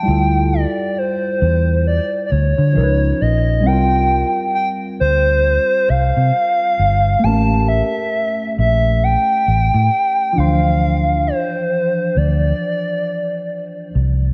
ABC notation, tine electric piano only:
X:1
M:4/4
L:1/8
Q:"Swing 16ths" 1/4=67
K:Dm
V:1 name="Tine electric piano"
[G,EFA]6 [^E,^C^DB=B]2 | [G,CEFB]8 | [A,B,^CGB]6- [A,B,CGB] [E,F,D=c]- | [E,F,Dc]6- [E,F,Dc] z |]